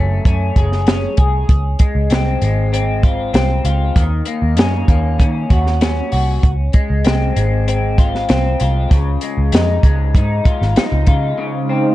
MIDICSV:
0, 0, Header, 1, 5, 480
1, 0, Start_track
1, 0, Key_signature, -5, "major"
1, 0, Tempo, 618557
1, 1155, Time_signature, 4, 2, 24, 8
1, 9272, End_track
2, 0, Start_track
2, 0, Title_t, "Analog synth pad"
2, 0, Program_c, 0, 89
2, 8829, Note_on_c, 0, 56, 73
2, 8831, Note_on_c, 0, 49, 78
2, 8831, Note_on_c, 0, 72, 71
2, 8831, Note_on_c, 0, 77, 84
2, 8833, Note_on_c, 0, 63, 73
2, 9272, Note_off_c, 0, 49, 0
2, 9272, Note_off_c, 0, 56, 0
2, 9272, Note_off_c, 0, 63, 0
2, 9272, Note_off_c, 0, 72, 0
2, 9272, Note_off_c, 0, 77, 0
2, 9272, End_track
3, 0, Start_track
3, 0, Title_t, "Clean electric guitar"
3, 0, Program_c, 1, 27
3, 0, Note_on_c, 1, 54, 80
3, 0, Note_on_c, 1, 57, 55
3, 0, Note_on_c, 1, 61, 62
3, 198, Note_off_c, 1, 61, 0
3, 201, Note_on_c, 1, 61, 58
3, 446, Note_on_c, 1, 68, 59
3, 678, Note_off_c, 1, 61, 0
3, 681, Note_on_c, 1, 61, 58
3, 914, Note_off_c, 1, 68, 0
3, 917, Note_on_c, 1, 68, 62
3, 1156, Note_off_c, 1, 54, 0
3, 1205, Note_off_c, 1, 57, 0
3, 1399, Note_on_c, 1, 56, 53
3, 1635, Note_off_c, 1, 61, 0
3, 1638, Note_on_c, 1, 60, 62
3, 1870, Note_off_c, 1, 56, 0
3, 1879, Note_on_c, 1, 56, 57
3, 2107, Note_off_c, 1, 60, 0
3, 2117, Note_on_c, 1, 60, 60
3, 2353, Note_off_c, 1, 68, 0
3, 2356, Note_on_c, 1, 65, 58
3, 2578, Note_off_c, 1, 60, 0
3, 2587, Note_on_c, 1, 60, 60
3, 2824, Note_off_c, 1, 65, 0
3, 2833, Note_on_c, 1, 65, 63
3, 3075, Note_on_c, 1, 51, 78
3, 3120, Note_off_c, 1, 60, 0
3, 3122, Note_off_c, 1, 65, 0
3, 3125, Note_off_c, 1, 56, 0
3, 3315, Note_on_c, 1, 58, 58
3, 3557, Note_on_c, 1, 61, 65
3, 3785, Note_off_c, 1, 58, 0
3, 3794, Note_on_c, 1, 58, 60
3, 4024, Note_off_c, 1, 61, 0
3, 4027, Note_on_c, 1, 61, 55
3, 4276, Note_on_c, 1, 66, 57
3, 4508, Note_off_c, 1, 61, 0
3, 4511, Note_on_c, 1, 61, 61
3, 4742, Note_off_c, 1, 66, 0
3, 4751, Note_on_c, 1, 66, 61
3, 4995, Note_off_c, 1, 51, 0
3, 5041, Note_off_c, 1, 66, 0
3, 5043, Note_off_c, 1, 58, 0
3, 5229, Note_on_c, 1, 56, 56
3, 5466, Note_off_c, 1, 61, 0
3, 5469, Note_on_c, 1, 60, 63
3, 5709, Note_off_c, 1, 56, 0
3, 5712, Note_on_c, 1, 56, 59
3, 5948, Note_off_c, 1, 60, 0
3, 5957, Note_on_c, 1, 60, 59
3, 6200, Note_on_c, 1, 65, 66
3, 6427, Note_off_c, 1, 60, 0
3, 6436, Note_on_c, 1, 60, 64
3, 6679, Note_off_c, 1, 65, 0
3, 6682, Note_on_c, 1, 65, 63
3, 6915, Note_on_c, 1, 49, 78
3, 6963, Note_off_c, 1, 60, 0
3, 7154, Note_off_c, 1, 56, 0
3, 7157, Note_on_c, 1, 56, 55
3, 7405, Note_on_c, 1, 63, 63
3, 7428, Note_off_c, 1, 65, 0
3, 7635, Note_off_c, 1, 56, 0
3, 7639, Note_on_c, 1, 56, 56
3, 7874, Note_off_c, 1, 63, 0
3, 7883, Note_on_c, 1, 63, 60
3, 8114, Note_on_c, 1, 65, 66
3, 8344, Note_off_c, 1, 63, 0
3, 8353, Note_on_c, 1, 63, 64
3, 8591, Note_off_c, 1, 65, 0
3, 8594, Note_on_c, 1, 65, 62
3, 8820, Note_off_c, 1, 49, 0
3, 8830, Note_on_c, 1, 49, 87
3, 8881, Note_off_c, 1, 63, 0
3, 9074, Note_on_c, 1, 60, 59
3, 9272, Note_off_c, 1, 49, 0
3, 9272, Note_off_c, 1, 56, 0
3, 9272, Note_off_c, 1, 60, 0
3, 9272, Note_off_c, 1, 65, 0
3, 9272, End_track
4, 0, Start_track
4, 0, Title_t, "Picked electric bass"
4, 0, Program_c, 2, 34
4, 0, Note_on_c, 2, 30, 91
4, 144, Note_off_c, 2, 30, 0
4, 197, Note_on_c, 2, 42, 95
4, 388, Note_off_c, 2, 42, 0
4, 435, Note_on_c, 2, 30, 80
4, 819, Note_off_c, 2, 30, 0
4, 916, Note_on_c, 2, 36, 82
4, 1108, Note_off_c, 2, 36, 0
4, 1157, Note_on_c, 2, 37, 94
4, 1348, Note_off_c, 2, 37, 0
4, 1513, Note_on_c, 2, 37, 87
4, 1610, Note_off_c, 2, 37, 0
4, 1636, Note_on_c, 2, 36, 88
4, 1828, Note_off_c, 2, 36, 0
4, 1877, Note_on_c, 2, 32, 96
4, 2565, Note_off_c, 2, 32, 0
4, 2593, Note_on_c, 2, 36, 89
4, 2786, Note_off_c, 2, 36, 0
4, 2829, Note_on_c, 2, 37, 79
4, 3024, Note_off_c, 2, 37, 0
4, 3071, Note_on_c, 2, 39, 92
4, 3265, Note_off_c, 2, 39, 0
4, 3431, Note_on_c, 2, 39, 77
4, 3554, Note_off_c, 2, 39, 0
4, 3554, Note_on_c, 2, 42, 90
4, 3747, Note_off_c, 2, 42, 0
4, 3789, Note_on_c, 2, 39, 80
4, 4031, Note_on_c, 2, 51, 101
4, 4043, Note_off_c, 2, 39, 0
4, 4225, Note_off_c, 2, 51, 0
4, 4270, Note_on_c, 2, 39, 83
4, 4656, Note_off_c, 2, 39, 0
4, 4756, Note_on_c, 2, 36, 84
4, 4948, Note_off_c, 2, 36, 0
4, 4991, Note_on_c, 2, 37, 103
4, 5185, Note_off_c, 2, 37, 0
4, 5355, Note_on_c, 2, 37, 77
4, 5451, Note_off_c, 2, 37, 0
4, 5479, Note_on_c, 2, 36, 81
4, 5669, Note_off_c, 2, 36, 0
4, 5715, Note_on_c, 2, 32, 81
4, 6404, Note_off_c, 2, 32, 0
4, 6439, Note_on_c, 2, 36, 85
4, 6629, Note_off_c, 2, 36, 0
4, 6682, Note_on_c, 2, 36, 84
4, 6871, Note_off_c, 2, 36, 0
4, 6915, Note_on_c, 2, 37, 102
4, 7107, Note_off_c, 2, 37, 0
4, 7276, Note_on_c, 2, 37, 83
4, 7371, Note_off_c, 2, 37, 0
4, 7394, Note_on_c, 2, 41, 81
4, 7586, Note_off_c, 2, 41, 0
4, 7632, Note_on_c, 2, 37, 88
4, 7875, Note_on_c, 2, 44, 94
4, 7887, Note_off_c, 2, 37, 0
4, 8066, Note_off_c, 2, 44, 0
4, 8237, Note_on_c, 2, 32, 87
4, 8332, Note_off_c, 2, 32, 0
4, 8475, Note_on_c, 2, 37, 92
4, 8570, Note_off_c, 2, 37, 0
4, 8592, Note_on_c, 2, 49, 93
4, 8784, Note_off_c, 2, 49, 0
4, 9272, End_track
5, 0, Start_track
5, 0, Title_t, "Drums"
5, 196, Note_on_c, 9, 36, 87
5, 201, Note_on_c, 9, 42, 76
5, 274, Note_off_c, 9, 36, 0
5, 278, Note_off_c, 9, 42, 0
5, 435, Note_on_c, 9, 36, 89
5, 436, Note_on_c, 9, 42, 73
5, 513, Note_off_c, 9, 36, 0
5, 513, Note_off_c, 9, 42, 0
5, 560, Note_on_c, 9, 38, 32
5, 637, Note_off_c, 9, 38, 0
5, 672, Note_on_c, 9, 42, 77
5, 681, Note_on_c, 9, 38, 104
5, 750, Note_off_c, 9, 42, 0
5, 759, Note_off_c, 9, 38, 0
5, 909, Note_on_c, 9, 42, 65
5, 915, Note_on_c, 9, 36, 89
5, 987, Note_off_c, 9, 42, 0
5, 993, Note_off_c, 9, 36, 0
5, 1156, Note_on_c, 9, 36, 98
5, 1156, Note_on_c, 9, 42, 84
5, 1233, Note_off_c, 9, 42, 0
5, 1234, Note_off_c, 9, 36, 0
5, 1389, Note_on_c, 9, 42, 69
5, 1395, Note_on_c, 9, 36, 80
5, 1467, Note_off_c, 9, 42, 0
5, 1472, Note_off_c, 9, 36, 0
5, 1630, Note_on_c, 9, 42, 74
5, 1648, Note_on_c, 9, 38, 95
5, 1707, Note_off_c, 9, 42, 0
5, 1726, Note_off_c, 9, 38, 0
5, 1874, Note_on_c, 9, 42, 54
5, 1952, Note_off_c, 9, 42, 0
5, 2123, Note_on_c, 9, 42, 74
5, 2201, Note_off_c, 9, 42, 0
5, 2354, Note_on_c, 9, 36, 90
5, 2357, Note_on_c, 9, 42, 74
5, 2432, Note_off_c, 9, 36, 0
5, 2435, Note_off_c, 9, 42, 0
5, 2591, Note_on_c, 9, 42, 77
5, 2601, Note_on_c, 9, 38, 100
5, 2669, Note_off_c, 9, 42, 0
5, 2678, Note_off_c, 9, 38, 0
5, 2831, Note_on_c, 9, 42, 65
5, 2908, Note_off_c, 9, 42, 0
5, 3072, Note_on_c, 9, 36, 100
5, 3073, Note_on_c, 9, 42, 86
5, 3150, Note_off_c, 9, 36, 0
5, 3151, Note_off_c, 9, 42, 0
5, 3302, Note_on_c, 9, 42, 72
5, 3380, Note_off_c, 9, 42, 0
5, 3545, Note_on_c, 9, 42, 81
5, 3563, Note_on_c, 9, 38, 100
5, 3622, Note_off_c, 9, 42, 0
5, 3641, Note_off_c, 9, 38, 0
5, 3788, Note_on_c, 9, 36, 78
5, 3790, Note_on_c, 9, 42, 55
5, 3866, Note_off_c, 9, 36, 0
5, 3868, Note_off_c, 9, 42, 0
5, 4032, Note_on_c, 9, 36, 91
5, 4036, Note_on_c, 9, 42, 73
5, 4109, Note_off_c, 9, 36, 0
5, 4113, Note_off_c, 9, 42, 0
5, 4270, Note_on_c, 9, 36, 87
5, 4271, Note_on_c, 9, 42, 71
5, 4348, Note_off_c, 9, 36, 0
5, 4349, Note_off_c, 9, 42, 0
5, 4396, Note_on_c, 9, 38, 32
5, 4474, Note_off_c, 9, 38, 0
5, 4509, Note_on_c, 9, 42, 76
5, 4518, Note_on_c, 9, 38, 99
5, 4587, Note_off_c, 9, 42, 0
5, 4596, Note_off_c, 9, 38, 0
5, 4748, Note_on_c, 9, 46, 46
5, 4825, Note_off_c, 9, 46, 0
5, 4993, Note_on_c, 9, 36, 100
5, 4993, Note_on_c, 9, 42, 84
5, 5070, Note_off_c, 9, 36, 0
5, 5071, Note_off_c, 9, 42, 0
5, 5224, Note_on_c, 9, 42, 65
5, 5231, Note_on_c, 9, 36, 82
5, 5302, Note_off_c, 9, 42, 0
5, 5309, Note_off_c, 9, 36, 0
5, 5467, Note_on_c, 9, 42, 81
5, 5485, Note_on_c, 9, 38, 101
5, 5544, Note_off_c, 9, 42, 0
5, 5563, Note_off_c, 9, 38, 0
5, 5715, Note_on_c, 9, 42, 62
5, 5792, Note_off_c, 9, 42, 0
5, 5959, Note_on_c, 9, 42, 74
5, 6037, Note_off_c, 9, 42, 0
5, 6194, Note_on_c, 9, 36, 91
5, 6196, Note_on_c, 9, 42, 74
5, 6271, Note_off_c, 9, 36, 0
5, 6274, Note_off_c, 9, 42, 0
5, 6323, Note_on_c, 9, 38, 32
5, 6400, Note_off_c, 9, 38, 0
5, 6430, Note_on_c, 9, 42, 79
5, 6440, Note_on_c, 9, 38, 97
5, 6508, Note_off_c, 9, 42, 0
5, 6517, Note_off_c, 9, 38, 0
5, 6671, Note_on_c, 9, 42, 66
5, 6749, Note_off_c, 9, 42, 0
5, 6914, Note_on_c, 9, 36, 101
5, 6914, Note_on_c, 9, 42, 85
5, 6992, Note_off_c, 9, 36, 0
5, 6992, Note_off_c, 9, 42, 0
5, 7147, Note_on_c, 9, 42, 69
5, 7225, Note_off_c, 9, 42, 0
5, 7390, Note_on_c, 9, 42, 86
5, 7408, Note_on_c, 9, 38, 97
5, 7467, Note_off_c, 9, 42, 0
5, 7486, Note_off_c, 9, 38, 0
5, 7630, Note_on_c, 9, 36, 73
5, 7634, Note_on_c, 9, 42, 58
5, 7708, Note_off_c, 9, 36, 0
5, 7712, Note_off_c, 9, 42, 0
5, 7873, Note_on_c, 9, 36, 88
5, 7878, Note_on_c, 9, 42, 73
5, 7951, Note_off_c, 9, 36, 0
5, 7955, Note_off_c, 9, 42, 0
5, 8112, Note_on_c, 9, 36, 91
5, 8113, Note_on_c, 9, 42, 75
5, 8190, Note_off_c, 9, 36, 0
5, 8190, Note_off_c, 9, 42, 0
5, 8242, Note_on_c, 9, 38, 31
5, 8319, Note_off_c, 9, 38, 0
5, 8351, Note_on_c, 9, 42, 75
5, 8361, Note_on_c, 9, 38, 96
5, 8429, Note_off_c, 9, 42, 0
5, 8438, Note_off_c, 9, 38, 0
5, 8587, Note_on_c, 9, 42, 63
5, 8592, Note_on_c, 9, 36, 89
5, 8664, Note_off_c, 9, 42, 0
5, 8670, Note_off_c, 9, 36, 0
5, 9272, End_track
0, 0, End_of_file